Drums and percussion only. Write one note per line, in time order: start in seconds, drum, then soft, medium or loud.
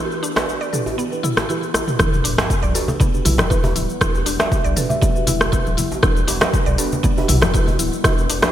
0.12 shaker soft
0.24 shaker medium
0.36 cross-stick medium
0.36 djembe slap loud
0.36 shaker soft
0.48 djembe tone medium
0.48 shaker soft
0.62 shaker soft
0.73 mid tom medium
0.73 shaker medium
0.86 djembe tone medium
0.86 shaker soft
0.99 shaker soft
1.12 shaker soft
1.24 mid tom medium
1.24 shaker medium
1.37 cross-stick medium
1.37 djembe slap medium
1.37 djembe tone medium
1.37 shaker soft
1.50 shaker soft
1.63 shaker soft
1.74 cross-stick medium
1.74 djembe tone medium
1.74 shaker medium
1.88 mid tom medium
1.88 shaker soft
1.99 kick loud
1.99 cross-stick medium
1.99 high conga medium
1.99 shaker medium
2.14 shaker soft
2.25 open hi-hat loud
2.25 shaker medium
2.38 cross-stick medium
2.38 djembe slap loud
2.38 djembe tone medium
2.38 high conga medium
2.38 shaker soft
2.50 kick loud
2.50 shaker medium
2.64 shaker soft
2.75 open hi-hat medium
2.75 djembe tone medium
2.75 shaker medium
2.88 low conga medium
2.88 shaker soft
3.00 kick loud
3.00 low conga loud
3.00 shaker medium
3.14 shaker soft
3.25 mid tom medium
3.25 open hi-hat medium
3.25 djembe tone medium
3.25 shaker loud
3.38 cross-stick loud
3.38 djembe slap medium
3.38 high conga loud
3.38 shaker soft
3.51 kick loud
3.51 shaker medium
3.64 djembe tone loud
3.64 low conga loud
3.64 shaker soft
3.76 open hi-hat medium
3.76 high conga medium
3.76 shaker medium
3.90 shaker soft
4.01 kick loud
4.01 cross-stick medium
4.01 high conga medium
4.01 shaker medium
4.15 djembe tone medium
4.15 shaker soft
4.26 open hi-hat medium
4.26 shaker medium
4.40 cross-stick medium
4.40 djembe slap loud
4.40 high conga medium
4.40 shaker soft
4.52 kick loud
4.52 djembe tone medium
4.52 shaker medium
4.65 shaker soft
4.77 mid tom medium
4.77 open hi-hat medium
4.77 shaker medium
4.90 low conga medium
4.90 shaker soft
5.02 kick loud
5.02 djembe tone medium
5.02 high conga medium
5.02 shaker medium
5.16 shaker soft
5.27 open hi-hat medium
5.27 low conga loud
5.27 shaker loud
5.40 cross-stick loud
5.40 djembe tone medium
5.40 shaker soft
5.53 kick loud
5.53 shaker medium
5.67 high conga medium
5.67 shaker soft
5.78 open hi-hat medium
5.78 high conga medium
5.78 low conga loud
5.78 shaker loud
5.92 djembe tone medium
5.92 shaker soft
6.03 kick loud
6.03 cross-stick medium
6.03 high conga medium
6.03 shaker medium
6.17 shaker soft
6.28 open hi-hat medium
6.28 djembe tone medium
6.28 shaker loud
6.41 cross-stick loud
6.41 djembe slap loud
6.41 high conga medium
6.41 shaker soft
6.54 kick loud
6.54 shaker medium
6.67 shaker soft
6.78 open hi-hat medium
6.78 djembe tone medium
6.78 shaker loud
6.92 low conga medium
6.92 shaker soft
7.04 kick loud
7.04 low conga loud
7.04 shaker medium
7.17 djembe tone medium
7.17 shaker soft
7.29 mid tom medium
7.29 open hi-hat medium
7.29 shaker loud
7.42 cross-stick loud
7.42 djembe slap medium
7.42 high conga loud
7.42 shaker soft
7.54 kick loud
7.54 shaker medium
7.68 djembe tone medium
7.68 low conga medium
7.68 shaker soft
7.79 open hi-hat medium
7.79 high conga medium
7.79 shaker loud
7.93 shaker soft
8.04 kick loud
8.04 cross-stick medium
8.04 djembe tone medium
8.04 high conga medium
8.04 shaker medium
8.18 shaker soft
8.30 open hi-hat medium
8.30 shaker loud
8.42 cross-stick medium
8.42 djembe slap loud
8.42 high conga medium
8.42 shaker soft